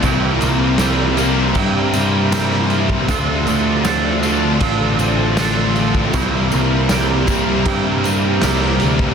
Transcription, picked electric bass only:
\new Staff \with { instrumentName = "Picked electric bass" } { \clef bass \time 4/4 \key c \mixolydian \tempo 4 = 79 c,8 c,4. g,2 | d,8 d,4. a,,2 | c,8 c,4. g,4 c,8 d,8 | }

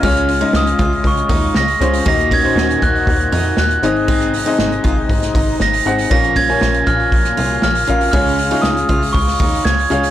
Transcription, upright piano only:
<<
  \new Staff \with { instrumentName = "Upright piano" } { \time 4/4 \key des \major \tempo 4 = 118 <aes des' f' aes' des''>8 r16 <aes des' f' aes' ees''>4. r4 r16 <aes des' f' aes' c''>16 r16 | <bes ees' ges' bes' ees''>8 r16 <bes ees' ges' bes' c''>4. r4 r16 <c' ees' aes' c'' ees''>8~ | <c' ees' aes' c'' ees''>8 r16 <c' ees' aes' c'' ees''>4. r4 r16 <c' ees' aes' c'' ges''>16 r16 | <des' f' bes' des'' f''>8 r16 <des' f' bes' des'' aes''>4. r4 r16 <des' f' bes' des'' f''>16 r16 |
<des' f' aes' des'' f''>8 r16 <des' f' aes' des'' f''>4. r4 r16 <des' f' aes' des'' f''>16 r16 | }
  \new Staff \with { instrumentName = "Upright piano" } { \clef bass \time 4/4 \key des \major des4. r2 r8 | bes,4. r2 <aes, ees>8~ | <aes, ees>4 r2. | <bes, f>4. r2 r8 |
<des aes>4. r2 r8 | }
>>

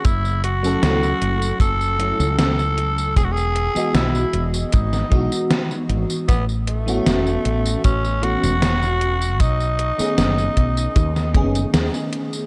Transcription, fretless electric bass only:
\new Staff \with { instrumentName = "Fretless electric bass" } { \clef bass \time 4/4 \key e \major \tempo 4 = 77 fis,,4 cis,16 r16 fis,,16 r16 fis,,8. cis,4~ cis,16 | e,,8. r16 b,,16 r16 e,,16 r16 gis,,16 r16 b,,16 r8. gis,,16 r16 | a,,4 e,,16 r16 a,,16 r16 a,,8. e,,4~ e,,16 | b,,8. r16 fis,,16 r16 b,,16 r16 dis,8 fis,,16 r16 dis,16 r8. | }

